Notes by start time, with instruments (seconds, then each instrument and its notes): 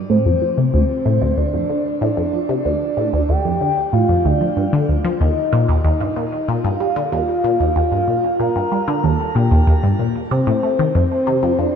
0.10 synth arpeggio sound A2, soft synth lead C5
0.26 synth arpeggio sound F2
0.42 synth arpeggio sound F3
0.58 synth arpeggio sound C3
0.74 synth arpeggio sound D2, soft synth lead C5
1.06 synth arpeggio sound A2
1.22 synth arpeggio sound D2
1.37 synth arpeggio sound D2, soft synth lead D5
1.54 synth arpeggio sound F2
1.70 synth arpeggio sound D3
2.01 synth arpeggio sound A2, soft synth lead D5
2.17 synth arpeggio sound F2
2.33 synth arpeggio sound F3
2.49 synth arpeggio sound C3
2.65 synth arpeggio sound D2, soft synth lead D5
2.97 synth arpeggio sound A2
3.13 synth arpeggio sound D2
3.29 synth arpeggio sound D2, soft synth lead G5
3.45 synth arpeggio sound F2
3.61 synth arpeggio sound D3
3.93 synth arpeggio sound A2, soft synth lead F5
4.09 synth arpeggio sound F2
4.25 synth arpeggio sound D2, soft synth lead D5
4.41 synth arpeggio sound F3
4.57 synth arpeggio sound G2
4.73 synth arpeggio sound D3
4.89 synth arpeggio sound D2
5.05 synth arpeggio sound F3
5.21 synth arpeggio sound D#2, soft synth lead D#5
5.53 synth arpeggio sound A#2
5.69 synth arpeggio sound D#2
5.84 synth arpeggio sound D#2, soft synth lead D#5
6.00 synth arpeggio sound G2
6.16 synth arpeggio sound A#2
6.48 synth arpeggio sound A#2, soft synth lead F5
6.64 synth arpeggio sound G2
6.80 synth arpeggio sound G3
6.96 synth arpeggio sound D3
7.12 synth arpeggio sound D#2, soft synth lead F5
7.44 synth arpeggio sound A#2
7.60 synth arpeggio sound D#2
7.76 synth arpeggio sound D#2, soft synth lead F5
7.92 synth arpeggio sound G2
8.08 synth arpeggio sound A#2
8.40 synth arpeggio sound A#2, soft synth lead A#5
8.56 synth arpeggio sound G2
8.72 synth arpeggio sound G3
8.88 synth arpeggio sound D3
9.04 synth arpeggio sound D#2, soft synth lead A5
9.35 synth arpeggio sound A#2, soft synth lead G5
9.51 synth arpeggio sound D#2
9.67 synth arpeggio sound D#2
9.83 synth arpeggio sound G2
9.99 synth arpeggio sound A#2
10.31 synth arpeggio sound C3, soft synth lead C5
10.47 synth arpeggio sound A2
10.63 synth arpeggio sound A3
10.79 synth arpeggio sound D#3
10.95 synth arpeggio sound F2, soft synth lead C5
11.27 synth arpeggio sound C3
11.43 synth arpeggio sound F2
11.59 synth arpeggio sound F2, soft synth lead D5